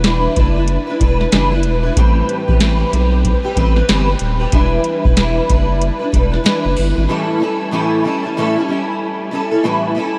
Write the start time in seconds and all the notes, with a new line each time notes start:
Already playing: E1
0.04 E3 G3 D4 E4 B4, snare, closed hi-hat
0.35 F#1 G3 D4 E4, kick, closed hi-hat
0.40 B4
0.55 E4 B4
0.59 D4
0.68 closed hi-hat
0.87 D4 E4 B4
1.00 E1 G3 D4 E4 B4, kick, closed hi-hat
1.19 D4 E4 B4, snare
1.32 F#1 E3 G3 D4 E4 B4, snare, closed hi-hat
1.51 D4 E4 B4
1.63 E1, closed hi-hat
1.83 D4 E4 B4
1.97 A1 A2 E3 G3 C4 G4 B4, kick, closed hi-hat
2.29 closed hi-hat
2.48 A1 G3 C4 G4 B4, kick
2.60 A2 E3 G3 C4 G4 B4, snare, closed hi-hat
2.91 B1 G3 C4 G4, closed hi-hat
2.95 B4
3.25 kick, closed hi-hat
3.43 G3 C4 G4 B4
3.56 A1 G3 C4 G4 B4, kick, closed hi-hat
3.76 G3 C4 G4 B4, snare
3.88 G1 A2 E3 G3 C4 G4 B4, snare, closed hi-hat
4.08 C4 G4 B4
4.12 G3
4.19 D#1, closed hi-hat
4.39 G3 C4 G4 B4
4.52 E1 E3 G3 D4 E4 B4, kick, closed hi-hat
4.84 closed hi-hat
5.04 E1 D4 E4 B4, kick
5.16 E3 G3 D4 E4 B4, snare, closed hi-hat
5.49 F#1 G3 D4 E4 B4, kick, closed hi-hat
5.82 closed hi-hat
5.99 D4 E4 B4
6.12 E1 G3 D4 E4 B4, kick, closed hi-hat
6.31 D4 E4 B4, snare
6.44 E3 G3 D4 E4 B4, snare, closed hi-hat
6.63 F#1 D4 E4 B4
6.77 G1, open hi-hat
6.96 G#1 D4 E4 B4
7.08 A2 E3 G3 C#4 E4 A4
7.40 G3 C#4 E4 A4
7.71 A2 E3 G3 C#4 E4 A4
8.04 G3 C#4 E4 A4
8.23 G3 C#4 E4 A4
8.37 A2 E3 G3 C#4 E4 A4
8.56 C#4 E4 A4
8.60 G3
8.68 G3 C#4 E4 A4
9.31 G3 C#4 E4 A4
9.51 C#4 E4 A4
9.55 G3
9.63 A2 E3 G3 C#4 E4 A4
9.95 G3 C#4 E4
9.99 A4